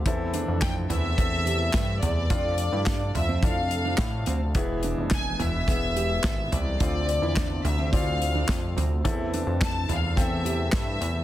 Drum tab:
HH |xxxxxxxx|xxxxxxxx|xxxxxxxx|xxxxxxxx|
CP |--x---x-|--x---x-|--x---x-|--x---x-|
SD |--o---o-|--o---o-|--o-o-o-|--o---o-|
FT |---o---o|---o----|---o---o|---o---o|
BD |o-o-o-o-|o-o-o-o-|o-o-o-o-|o-o-o-o-|

HH |xxxxxxxx|
CP |--x---x-|
SD |--o-o-o-|
FT |---o----|
BD |o-o-o-o-|